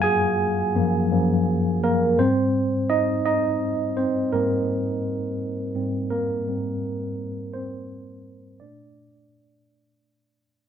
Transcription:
<<
  \new Staff \with { instrumentName = "Tine electric piano" } { \time 6/8 \key aes \major \tempo 4. = 56 <aes' aes''>2 r8 <bes bes'>8 | c''4 <ees' ees''>8 <ees' ees''>4 <c' c''>8 | <bes bes'>2~ <bes bes'>8 <bes bes'>8~ | <bes bes'>4. <c' c''>4. |
d''2~ d''8 r8 | }
  \new Staff \with { instrumentName = "Tine electric piano" } { \clef bass \time 6/8 \key aes \major r4 <ges, f bes>8 <ges, f bes>4. | <aes, g c'>8 r2 r8 | <aes, g c'>2 <aes, g c'>8 r8 | <aes, g c'>2. |
<bes, a d'>2. | }
>>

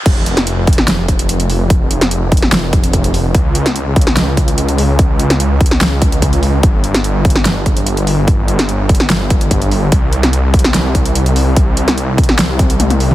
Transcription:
<<
  \new Staff \with { instrumentName = "Detuned saw bass" } { \clef bass \time 4/4 \key des \lydian \tempo 4 = 146 f,,1~ | f,,1 | des,1~ | des,1 |
g,,1~ | g,,1 | c,1~ | c,1 | }
  \new DrumStaff \with { instrumentName = "Drums" } \drummode { \time 4/4 <cymc hh bd>8 hh16 <hh sn>16 hh8 <hh bd>32 hh32 sn16 <hh sn>8 <hh bd>16 hh16 hh16 hh16 hho8 | <hh bd>8 hh16 <hh sn>16 hh8 <hh bd>32 hh32 sn16 <hh sn>8 <hh bd>16 hh16 <hh bd>16 hh16 hho8 | <hh bd>8 hh16 <hh sn>16 hh8 <hh bd>32 hh32 sn16 <hh sn>8 <hh bd>16 hh16 hh16 hh16 hho8 | <hh bd>8 hh16 <hh sn>16 hh8 <hh bd>32 hh32 sn16 <hh sn>8 <hh bd>16 hh16 <hh bd>16 hh16 hho8 |
<hh bd>8 hh16 <hh sn>16 hh8 <hh bd>32 hh32 sn16 <hh sn>8 <hh bd>16 hh16 hh16 hh16 hho8 | <hh bd>8 hh16 <hh sn>16 hh8 <hh bd>32 hh32 sn16 <hh sn>8 <hh bd>16 hh16 <hh bd>16 hh16 hho8 | <hh bd>8 hh16 <hh sn>16 hh8 <hh bd>32 hh32 sn16 <hh sn>8 <hh bd>16 hh16 hh16 hh16 hho8 | <hh bd>8 hh16 <hh sn>16 hh8 <hh bd>32 hh32 sn16 <hh sn>8 <hh bd>16 hh16 <hh tommh>16 <hh tommh>16 hho16 toml16 | }
>>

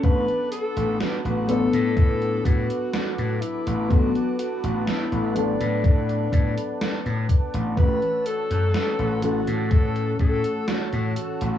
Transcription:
<<
  \new Staff \with { instrumentName = "Analog synth pad" } { \time 4/4 \key b \dorian \tempo 4 = 62 << { <b' d'''>1~ | <b' d'''>1 | <cis'' e'''>1 | } \\ { <fis'' a''>1~ | <fis'' a''>1~ | <fis'' a''>1 | } >> }
  \new Staff \with { instrumentName = "Alto saxophone" } { \time 4/4 \key b \dorian b'8 a'8 fis'8 a'8 a'8 fis'4 e'8 | fis'8 fis'8 e'8 d'2 r8 | b'8 a'4 fis'8 a'8 a'8 fis'8 fis'8 | }
  \new Staff \with { instrumentName = "FM electric piano" } { \time 4/4 \key b \dorian <fis b d' a'>4. <fis b d' b'>2~ <fis b d' b'>8 | <fis b d' a'>4. <fis b d' a'>2~ <fis b d' a'>8 | <e a cis' fis'>4. <e a cis' a'>2~ <e a cis' a'>8 | }
  \new Staff \with { instrumentName = "Slap bass" } { \clef bass \time 4/4 \key b \dorian a,,16 r8 a,,16 r16 a,,8 a,8. a,16 r8 a,16 r16 a,,16 | a,,16 r8 a,,16 r16 a,,8 a,8. a,16 r8 a,16 r16 a,,16 | a,,16 r8 fis,16 r16 a,,8 a,8. a,16 r8 a,16 r16 a,,16 | }
  \new DrumStaff \with { instrumentName = "Drums" } \drummode { \time 4/4 <hh bd>16 hh16 hh16 hh16 <hh sn>16 hh16 hh16 hh16 <hh bd>16 hh16 <hh bd>16 hh16 <hh sn>16 hh16 hh16 hh16 | <hh bd>16 hh16 hh16 hh16 <hh sn>16 hh16 hh16 hh16 <hh bd>16 hh16 <hh bd>16 hh16 <hh sn>16 hh16 <hh bd>16 hh16 | <hh bd>16 hh16 hh16 hh16 <hh sn>16 hh16 hh16 hh16 <hh bd>16 hh16 <hh bd>16 hh16 <hh sn>16 hh16 hh16 hh16 | }
>>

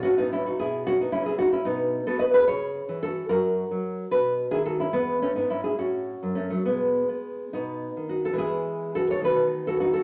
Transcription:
\new Staff \with { instrumentName = "Nylon-string guitar" } { \time 6/8 \key e \major \tempo 4. = 73 << { <cis' fis'>16 <b dis'>16 <cis' e'>16 <dis' fis'>16 <e' gis'>8 <cis' fis'>16 <b dis'>16 <cis' e'>16 <e' gis'>16 <dis' fis'>16 <cis' e'>16 | <b dis'>8. <fis' a'>16 <b' dis''>16 <gis' b'>16 <gis' cis''>4 <fis' a'>8 | <fis' ais'>4. <fis' b'>8. <e' gis'>16 <fis' a'>16 <cis' e'>16 | <gis b>8 <a cis'>16 <b dis'>16 <cis' e'>16 <e' gis'>16 <cis' fis'>4 <a cis'>16 <fis a>16 |
<gis b>4. <b dis'>4 <dis' fis'>16 <fis' a'>16 | <e' gis'>4 <fis' a'>16 <a' cis''>16 <fis' b'>8. <fis' a'>16 <dis' fis'>16 <fis' a'>16 | } \\ { a,4 b,4 cis4 | b,8. b8. cis8. e8. | fis,8. fis8. b,8. dis8. | e,8. gis,8. a,8. fis,8. |
b,8. b8. b,8. dis8. | <e gis b>4. <dis a b>4. | } >> }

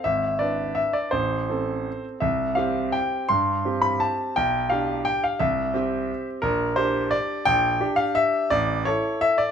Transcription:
\new Staff \with { instrumentName = "Grand piano" } { \time 3/4 \key c \major \tempo 4 = 171 << { e''4 d''4 e''8 d''8 | c''2~ c''8 r8 | e''4 f''4 g''4 | c'''4. b''8 a''4 |
g''4 f''4 g''8 f''8 | e''2~ e''8 r8 | \key g \dorian bes'4 c''4 d''4 | g''4. f''8 e''4 |
d''4 cis''4 e''8 d''8 | } \\ { gis,,4 <d' b'>2 | a,,4 <c' a'>2 | c,4 <c' g'>2 | g,4 <c' g'>2 |
b,,4 <d' g'>2 | c,4 <c' g'>2 | bes,,4 <d' g'>2 | bes,,4 <d' g'>2 |
a,,4 <e' a'>2 | } >> }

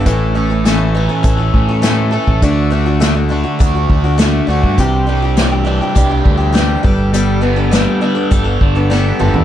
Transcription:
<<
  \new Staff \with { instrumentName = "Steel-string acoustic guitar" } { \time 4/4 \key d \major \tempo 4 = 102 <a, e a cis' a'>8 <e a cis' a'>16 <a cis' a'>16 <a, e a cis' a'>8 <e a cis' a'>16 <a cis' a'>16 <e a cis' a'>16 <a cis' a'>8 <a cis' a'>16 <a, e a cis' a'>8 <e a cis' a'>8 | <d a d' fis'>8 <d a d' fis'>16 <a d' fis'>16 <d a d' fis'>16 <a d' fis'>16 <d a d' fis'>16 <a d' fis'>16 <d a d' fis'>16 <a d' fis'>8 <a d' fis'>16 <d a d' fis'>8 <d a d' fis'>8 | <c e g d' g'>8 <e g d' g'>16 <g d' g'>16 <c e g d' g'>16 <g d' g'>16 <e g d' g'>16 <g d' g'>16 <e g d' g'>16 <g d' g'>8 <g d' g'>16 <c e g d' g'>8 <g b d' a'>8 | <g b d' a'>8 <g b d' a'>16 <b d' a'>16 <g b d' a'>8 <g b d' a'>16 <b d' a'>16 <g b d' a'>16 <b d' a'>8 <b d' a'>16 <g b d' a'>8 <g b d' a'>8 | }
  \new Staff \with { instrumentName = "Overdriven electric guitar" } { \time 4/4 \key d \major a,8 a8 e8 cis'8 a'8 cis'8 a8 a'8 | d8 a8 d8 d'8 fis'8 d'8 a8 fis'8 | c8 g8 e8 d'8 g'8 d'8 g8 g8 | g8 b8 g8 d'8 a'8 d'8 b8 a'8 | }
  \new Staff \with { instrumentName = "Picked electric bass" } { \clef bass \time 4/4 \key d \major a,,2 a,,8 a,4~ a,16 a,,16 | d,2 d,8 d,4 d,16 g,16 | c,2 c,8 d,4 g,,8~ | g,,4. r8 g,,8 g,,4 g,,16 e,16 | }
  \new DrumStaff \with { instrumentName = "Drums" } \drummode { \time 4/4 <hh bd>4 <hh sn>4 <hh bd>8 bd8 <hh sn>8. bd16 | <hh bd>4 <hh sn>4 <hh bd>8 bd8 <hh sn>8. bd16 | <hh bd>4 <hh sn>4 <hh bd>8 bd8 <hh sn>8 bd8 | hh4 <hh sn>4 <hh bd>8 bd8 sn8 toml16 tomfh16 | }
>>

